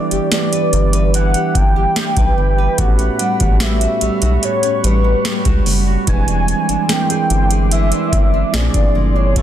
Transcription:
0.00 0.22 E3 medium
0.00 1.14 E3 medium
0.00 0.23 G3 medium
0.00 0.23 B3 medium
0.00 0.23 D4 medium
0.00 0.31 D4 medium
0.00 0.11 G4 medium
0.00 0.27 G4 medium
0.00 2.76 G4 medium
0.00 0.28 D5 loud
0.00 2.75 E5 medium
0.00 6.03 B5 medium
0.00 2.75 D6 medium
0.11 0.20 G1 soft
0.11 1.35 G4 medium
0.11 closed hi-hat medium
0.31 1.77 E3 medium
0.31 1.78 G3 medium
0.31 1.78 B3 medium
0.31 0.72 D4 medium
0.31 1.78 D4 medium
0.31 1.79 G4 medium
0.31 1.11 D5 loud
0.31 snare loud
0.31 closed hi-hat medium
0.53 0.93 B4 medium
0.53 closed hi-hat medium
0.73 1.35 G1 loud
0.73 1.54 D4 medium
0.73 closed hi-hat medium
0.93 2.17 B4 medium
0.93 closed hi-hat medium
1.14 3.84 E3 medium
1.14 1.58 F#5 loud
1.14 closed hi-hat medium
1.34 1.76 G4 medium
1.34 closed hi-hat medium
1.55 1.86 G1 medium
1.55 1.96 D4 medium
1.55 2.81 G5 loud
1.55 kick medium
1.55 closed hi-hat medium
1.76 3.02 G4 medium
1.96 2.37 D4 medium
1.96 snare loud
1.96 closed hi-hat medium
2.17 2.32 B1 medium
2.17 2.58 B4 medium
2.17 kick medium
2.17 closed hi-hat medium
2.37 2.68 G1 medium
2.37 2.87 D4 medium
2.58 3.02 B4 medium
2.77 3.09 A1 loud
2.77 4.41 A2 medium
2.77 6.04 G3 medium
2.77 3.51 A3 medium
2.77 3.52 B3 medium
2.77 3.52 C#4 medium
2.77 3.51 F#4 medium
2.77 3.52 G4 medium
2.77 6.04 F#5 medium
2.77 3.64 F#5 loud
2.77 6.04 C#6 medium
2.77 kick loud
2.77 closed hi-hat medium
2.99 3.39 C#4 medium
2.99 closed hi-hat soft
3.19 3.60 G3 medium
3.19 closed hi-hat medium
3.40 3.87 A1 loud
3.40 4.62 C#4 medium
3.40 kick loud
3.40 closed hi-hat medium
3.60 4.01 G3 medium
3.60 5.06 A3 medium
3.60 5.07 B3 medium
3.60 5.07 C#4 medium
3.60 5.06 F#4 medium
3.60 5.07 G4 medium
3.60 4.44 E5 loud
3.60 snare loud
3.60 closed hi-hat medium
3.81 4.21 F#4 medium
3.81 closed hi-hat medium
4.01 4.10 B1 medium
4.01 4.83 G3 medium
4.01 closed hi-hat medium
4.22 4.38 B1 loud
4.22 5.44 F#4 medium
4.22 closed hi-hat medium
4.43 6.15 A2 medium
4.43 4.86 C#5 loud
4.43 closed hi-hat medium
4.63 5.03 C#4 medium
4.63 closed hi-hat soft
4.84 5.15 A1 loud
4.84 5.25 G3 medium
4.84 5.67 B4 medium
4.84 closed hi-hat medium
5.04 6.15 C#4 medium
5.25 5.66 G3 medium
5.25 snare loud
5.25 closed hi-hat medium
5.45 5.61 C#2 medium
5.45 5.86 F#4 medium
5.45 kick loud
5.45 closed hi-hat soft
5.66 5.97 F#1 medium
5.66 6.07 G3 medium
5.66 open hi-hat medium
5.87 6.16 F#4 medium
6.06 6.54 E1 loud
6.06 6.80 E3 medium
6.06 7.71 E3 medium
6.06 6.81 G3 medium
6.06 6.80 G#3 medium
6.06 6.80 C4 medium
6.06 6.81 D4 medium
6.06 8.51 E4 medium
6.06 8.52 E5 medium
6.06 6.92 G#5 loud
6.06 8.52 C6 medium
6.06 9.33 D6 medium
6.06 kick loud
6.06 closed hi-hat medium
6.28 6.69 D4 medium
6.28 closed hi-hat soft
6.48 6.89 C4 medium
6.48 closed hi-hat medium
6.69 6.77 G1 medium
6.69 7.91 D4 medium
6.69 closed hi-hat medium
6.88 8.35 E3 medium
6.88 8.35 G#3 medium
6.88 7.30 C4 medium
6.88 8.35 C4 medium
6.88 8.36 D4 medium
6.88 8.36 A#4 medium
6.88 7.72 G5 loud
6.88 snare loud
6.88 closed hi-hat medium
7.10 7.50 G#4 medium
7.10 closed hi-hat medium
7.30 7.92 G1 loud
7.30 8.12 C4 medium
7.30 closed hi-hat medium
7.51 8.62 G#4 medium
7.51 closed hi-hat medium
7.72 8.62 E3 medium
7.72 8.56 E5 loud
7.72 closed hi-hat medium
7.92 8.32 D4 medium
7.92 closed hi-hat medium
8.13 8.44 G1 loud
8.13 8.62 C4 medium
8.13 kick medium
8.13 closed hi-hat medium
8.34 8.62 D4 medium
8.52 8.69 A#1 loud
8.52 9.36 A#2 medium
8.52 9.26 F3 medium
8.52 9.26 A#3 medium
8.52 9.27 C4 medium
8.52 8.61 C#4 medium
8.52 9.27 G#4 medium
8.52 9.17 D5 medium
8.52 snare loud
8.52 closed hi-hat medium
8.61 9.30 D4 medium
8.74 8.90 G1 medium
8.74 9.14 D4 medium
8.74 kick medium
8.74 closed hi-hat soft
8.95 9.38 G1 loud
8.95 9.42 G#3 medium
9.16 9.42 D4 medium
9.16 9.42 C#5 medium
9.35 9.42 A1 loud
9.35 9.42 A2 medium
9.35 9.42 G3 medium
9.35 9.42 B3 medium
9.35 9.42 C#4 medium
9.35 9.42 F#4 medium
9.35 9.42 A4 medium
9.35 kick loud
9.35 closed hi-hat medium

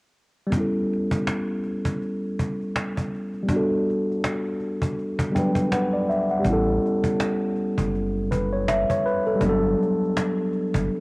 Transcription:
0.46 3.42 G3 medium
0.46 3.43 B3 medium
0.52 3.45 C#4 medium
0.52 cajon bass medium
0.57 3.47 E4 medium
0.57 3.48 A4 medium
0.93 cajon slap soft
1.11 cajon bass medium
1.27 cajon slap loud
1.64 cajon slap soft
1.85 cajon bass medium
2.02 cajon slap soft
2.39 cajon bass medium
2.61 cajon slap soft
2.76 cajon slap loud
2.97 cajon bass medium
3.15 cajon slap soft
3.34 cajon slap soft
3.43 5.27 G3 medium
3.43 5.29 B3 medium
3.48 5.31 D4 medium
3.48 cajon bass medium
3.53 5.32 F#4 medium
3.53 5.34 A4 medium
3.90 cajon slap soft
4.12 cajon slap soft
4.24 cajon slap loud
4.60 cajon slap soft
4.82 cajon bass medium
4.99 cajon slap soft
5.19 cajon bass loud
5.31 6.38 G3 medium
5.31 6.42 B3 soft
5.31 6.46 D4 soft
5.31 5.69 G5 medium
5.36 6.46 F#3 soft
5.36 5.71 B4 medium
5.36 cajon bass medium
5.55 cajon bass medium
5.72 5.92 B4 medium
5.72 6.06 F#5 medium
5.72 cajon slap loud
5.92 6.08 D5 medium
5.92 cajon slap soft
6.09 6.43 E5 medium
6.09 cajon slap soft
6.30 6.65 F#5 medium
6.30 cajon slap soft
6.39 8.24 G3 medium
6.39 8.25 B3 medium
6.44 6.79 A1 loud
6.44 8.27 C#4 medium
6.44 cajon bass medium
6.49 8.29 E4 medium
6.49 8.30 A4 medium
6.86 cajon slap soft
7.04 cajon bass medium
7.20 cajon slap loud
7.56 cajon slap soft
7.78 8.85 F#1 medium
7.78 cajon bass medium
7.95 cajon slap soft
8.31 8.51 B4 medium
8.31 cajon bass medium
8.53 8.67 C#5 medium
8.53 cajon slap soft
8.68 8.88 E5 medium
8.68 cajon slap loud
8.90 9.04 C#5 medium
8.90 cajon bass medium
9.06 9.25 B4 medium
9.06 cajon slap soft
9.26 9.48 A4 medium
9.26 cajon slap soft
9.35 11.00 G3 medium
9.35 9.48 A#3 medium
9.41 9.75 G1 loud
9.41 11.00 D4 medium
9.41 cajon bass medium
9.46 11.00 F#3 medium
9.46 11.00 B3 medium
9.46 11.00 A4 medium
9.83 cajon slap soft
10.04 cajon slap soft
10.17 cajon slap loud
10.38 cajon slap soft
10.53 cajon slap soft
10.74 10.89 F#1 medium
10.74 cajon bass medium

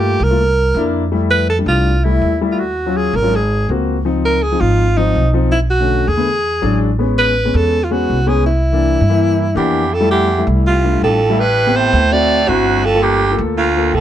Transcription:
0.00 0.14 G2 medium
0.00 0.18 A3 medium
0.00 0.19 A#3 medium
0.00 0.19 F4 medium
0.00 0.24 G4 medium
0.20 0.71 C2 medium
0.20 0.95 A#4 medium
0.30 0.39 A3 medium
0.30 0.39 A#3 medium
0.30 0.39 F4 medium
0.74 1.61 F2 medium
0.74 1.01 A#3 medium
0.74 1.02 D4 medium
0.74 1.02 E4 medium
1.12 1.44 G3 medium
1.12 1.44 A3 medium
1.12 1.44 E4 medium
1.31 1.48 B4 medium
1.50 1.58 A4 medium
1.59 1.90 G3 medium
1.59 1.91 A3 medium
1.59 1.91 D4 medium
1.66 2.18 C2 medium
1.66 2.06 F4 medium
2.04 2.30 G3 medium
2.04 2.30 A3 medium
2.04 2.41 E4 medium
2.04 2.31 E4 medium
2.22 3.08 D#2 medium
2.41 2.59 G3 medium
2.41 2.59 A3 medium
2.41 2.60 E4 medium
2.52 2.61 F4 medium
2.59 2.98 F#4 medium
2.86 3.12 F#3 medium
2.86 3.12 C#4 medium
2.86 3.12 F4 medium
2.97 3.17 G#4 medium
3.14 3.65 G#1 medium
3.14 3.37 A#4 medium
3.22 3.32 F#3 medium
3.22 3.32 C#4 medium
3.22 3.32 F4 medium
3.36 3.71 G#4 medium
3.69 4.55 C#2 medium
3.69 3.95 A#3 medium
3.69 3.95 C4 medium
3.69 3.95 F#4 medium
4.05 4.37 F3 medium
4.05 4.37 C4 medium
4.05 4.38 D#4 medium
4.25 4.44 A#4 medium
4.43 4.62 G#4 medium
4.52 4.84 F3 medium
4.52 4.84 C4 medium
4.52 4.84 D#4 medium
4.60 5.12 G#1 medium
4.60 4.98 F4 medium
4.97 5.23 F3 medium
4.97 5.23 C4 medium
4.97 5.34 D#4 medium
4.97 5.24 D#4 medium
5.15 6.01 B1 medium
5.33 5.52 F3 medium
5.33 5.52 C4 medium
5.33 5.53 D#4 medium
5.52 5.60 E4 medium
5.70 6.09 F#4 medium
5.80 6.05 D3 medium
5.80 6.06 A3 medium
5.80 6.06 C#4 medium
6.07 6.58 E2 medium
6.07 6.81 G#4 medium
6.17 6.26 D3 medium
6.17 6.26 A3 medium
6.17 6.26 B3 medium
6.62 7.48 A1 medium
6.62 6.88 F#3 medium
6.62 6.88 G#3 medium
6.62 6.88 D4 medium
6.99 7.31 G#3 medium
6.99 7.31 B3 medium
6.99 7.31 C#4 medium
7.18 7.58 B4 medium
7.45 7.77 G#3 medium
7.45 7.77 B3 medium
7.45 7.77 C#4 medium
7.54 8.05 E2 medium
7.54 7.85 A4 loud
7.84 7.93 F4 medium
7.90 8.16 G#3 medium
7.90 8.17 B3 medium
7.90 8.17 C#4 medium
7.90 8.30 F#4 medium
8.10 8.95 C2 medium
8.26 8.45 G#3 medium
8.26 8.45 B3 medium
8.26 8.46 C#4 medium
8.26 8.46 G#4 medium
8.46 9.52 E4 medium
8.73 8.99 E3 medium
8.73 8.99 A#3 medium
8.73 8.99 D4 medium
9.01 9.52 G2 medium
9.09 9.42 E3 medium
9.09 9.42 A#3 medium
9.09 9.42 E4 medium
9.55 9.96 E2 medium
9.55 10.41 F2 medium
9.55 9.81 E3 medium
9.55 9.81 A#3 medium
9.55 9.81 D4 medium
9.55 9.95 G4 medium
9.93 10.11 F2 medium
9.93 10.10 A4 medium
10.00 10.27 G3 medium
10.00 10.27 A3 medium
10.00 10.27 E4 medium
10.11 10.45 E2 medium
10.11 10.45 G4 medium
10.38 10.70 G3 medium
10.38 10.70 A3 medium
10.38 10.71 E4 medium
10.47 10.98 C2 medium
10.67 11.00 C2 medium
10.67 11.00 F4 medium
10.85 11.16 G3 medium
10.85 11.16 A3 medium
10.85 11.16 D4 medium
11.02 11.88 A1 medium
11.02 11.40 F2 medium
11.02 11.41 A4 medium
11.30 11.39 G3 medium
11.30 11.39 A3 medium
11.30 11.39 E4 medium
11.39 11.77 G2 medium
11.39 11.78 B4 medium
11.67 11.99 B3 medium
11.67 11.99 C4 medium
11.67 11.99 G4 medium
11.76 12.13 A2 medium
11.76 12.14 C5 medium
11.93 12.44 D2 medium
12.11 12.51 A2 medium
12.11 12.37 C4 medium
12.11 12.38 E4 medium
12.11 12.38 F#4 medium
12.11 12.50 D5 loud
12.48 13.34 G1 medium
12.48 12.86 D2 medium
12.48 12.81 C4 medium
12.48 12.81 E4 medium
12.48 12.87 F#4 medium
12.48 12.81 F#4 medium
12.84 13.04 F2 medium
12.84 13.04 A4 medium
12.94 13.20 A#3 medium
12.94 13.20 F4 medium
12.94 13.20 A4 medium
13.03 13.40 D2 medium
13.03 13.40 G4 medium
13.31 13.63 A#3 medium
13.31 13.63 F4 medium
13.31 13.63 A4 medium
13.38 13.90 D2 loud
13.58 13.95 D2 medium
13.58 13.97 F4 medium
13.77 14.00 A#3 medium
13.77 14.00 F4 medium
13.77 14.00 A4 medium
13.94 14.00 C2 medium
13.94 14.00 F2 medium
13.94 14.00 A4 medium

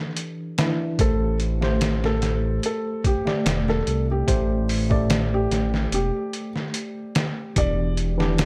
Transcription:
0.00 0.54 E3 medium
0.00 0.54 D4 medium
0.00 0.55 A4 medium
0.17 closed hi-hat medium
0.58 0.69 E3 medium
0.58 0.69 D4 medium
0.58 0.69 E4 medium
0.58 snare loud
0.58 closed hi-hat medium
0.99 2.60 A1 loud
0.99 1.57 A3 medium
0.99 1.57 G4 medium
0.99 1.37 A4 medium
0.99 1.58 C5 medium
0.99 kick loud
0.99 closed hi-hat medium
1.40 closed hi-hat medium
1.61 3.21 A3 medium
1.61 3.21 G4 medium
1.61 3.22 C5 medium
1.61 snare soft
1.81 snare loud
1.81 closed hi-hat medium
2.04 2.59 A4 medium
2.04 snare soft
2.22 snare soft
2.22 closed hi-hat medium
2.63 3.02 A4 medium
2.63 closed hi-hat medium
3.04 3.62 G4 medium
3.04 kick medium
3.04 closed hi-hat medium
3.25 4.23 A3 medium
3.25 4.23 G4 medium
3.25 4.24 D5 medium
3.25 snare medium
3.46 3.82 E1 medium
3.46 snare loud
3.46 closed hi-hat medium
3.68 4.05 A4 medium
3.68 snare soft
3.87 4.23 C2 medium
3.87 closed hi-hat medium
4.11 4.65 G4 medium
4.27 5.48 A1 loud
4.27 4.85 A3 medium
4.27 4.86 G4 medium
4.27 4.86 C5 loud
4.27 kick loud
4.27 closed hi-hat medium
4.69 open hi-hat medium
4.89 7.51 A3 medium
4.89 7.52 G4 medium
4.89 7.52 D5 medium
4.89 kick medium
5.10 snare loud
5.10 closed hi-hat medium
5.34 5.88 G4 medium
5.51 5.88 A1 medium
5.51 snare soft
5.51 closed hi-hat medium
5.74 snare soft
5.92 6.12 E1 loud
5.92 6.50 G4 medium
5.92 closed hi-hat medium
6.33 closed hi-hat medium
6.56 snare soft
6.74 closed hi-hat medium
7.15 snare loud
7.15 closed hi-hat medium
7.56 8.45 E1 loud
7.56 8.14 E3 medium
7.56 8.14 D4 medium
7.56 8.15 G4 medium
7.56 7.95 D5 loud
7.56 kick loud
7.56 closed hi-hat medium
7.97 closed hi-hat medium
8.18 8.45 E3 medium
8.18 8.45 D4 medium
8.18 8.45 G4 loud
8.18 snare medium
8.38 snare loud
8.38 closed hi-hat medium

